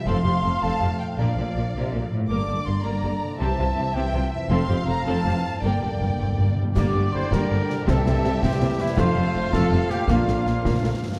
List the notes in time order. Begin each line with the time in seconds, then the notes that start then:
Already playing: F3 C4
0.00 F4 A4
0.07 F1 F2 F3 A3 C4 A4 F5 C6
0.25 F1 F2 C4 G4
0.43 F1 F2 C4 A4
0.61 F1 F2 F3 A3 C4 A4 A5
0.80 F1 F2 C4 G4
1.00 A#2 G5
1.06 A#3
1.10 D4
1.15 A#1 A#3 A#4 D5 F5
1.19 A#2 F3 D4 A#4 F5
1.36 A#1 A#2 A#3 A4
1.54 A#1 A#2
1.58 A#3 A#4
1.73 A#1 C3 A#3 A#4
1.92 A#1 A#2 A#3 A4
2.12 G2 A2
2.17 A#3
2.21 D4
2.26 G1 A#4 D5 D6
2.30 G2 D3 A#3 D4 A#4
2.48 G1 G2 A#3 A4
2.66 G1 G2 A#3 A#4 C6
2.83 G1 G2 D3 A#3 D4 A#4 A#5
3.02 G1 G2 A#3 A4
3.23 C3
3.27 C4
3.32 E4
3.36 C2 C3 E3 C4 G4 E5 A5
3.41 C4 G4
3.58 C2 C3 C4 F4
3.76 C2 C3 C4 G4
3.93 C2 C3 E3 C4 G4 G5
4.13 C2 C3 C4 F4
4.32 F2 E5
4.38 C4
4.43 F4
4.47 F1 F2 F3 C4 A4 C6
4.51 C4 A4 F5 C6
4.69 F1 F2 C4 G4
4.87 F1 F2 C4 A4 A#5
5.06 F1 F2 F3 C4 A4 A5
5.24 F1 F2 C4 G4
5.34 E3
5.45 G2
5.50 A#3
5.54 D4
5.59 G1 G2 D3 A#3 A#4 D5 G5
5.64 G2 A#3 A#4
5.72 G2
5.79 G1 G2
5.83 G2 A#3 A4
5.94 G2
6.00 G1 G2 A#3 A#4
6.09 G2
6.17 G1 G2 C4
6.26 G2
6.32 G2
6.37 G1 G2 A#3
6.47 G2
6.55 G2 G3
6.63 G2 A#3
6.67 D4
6.71 G2 A#4 D6
6.75 G1 D3 G3 A#3 D4 G4 D5, concert bass drum, snare, crash
6.94 G1 G2 A3
7.12 G1 G2 A#3 E4 C5 C6
7.31 G1 G2 D3 G3 A#3 D4 G4 A#4 A#5, concert bass drum, snare
7.49 G1 G2 A3
7.69 C3, snare
7.73 G3
7.78 E4
7.82 C4 C5
7.86 C2 C3 E3 G3 C4 G4 A4 E5 A5, concert bass drum, snare
8.05 C2 C3 A#3, snare
8.24 C2 C3 C4, snare
8.40 C2 C3 E3 G3 C4 G4 G5, concert bass drum, snare
8.60 C2 C3 A#3
8.79 F2 G3 E4 E5
8.84 A3
8.88 F4
8.93 F3 A3 F4 C5 F5
8.97 F1 F2 A3 C4 F4 C5 C6, concert bass drum, snare
9.16 F1 F2 G3
9.34 F1 F2 A3
9.51 F1 F2 F3 A3 C4 F4 A4 A5, concert bass drum, snare
9.72 F1 F2 G3
9.90 A#2 A#3 G4 G5, snare
9.94 A#3
9.99 F4
10.04 D4 F4 D5
10.08 A#1 A#2 F3 A#3 D4 F4 F5, concert bass drum, snare
10.25 A#1 A#2 A3, snare
10.45 A#1 A#2 A#3, snare
10.63 A#1 A#2 A#3, concert bass drum, snare
10.82 A#1 A#2 A3
11.03 G2
11.07 A#3
11.12 G4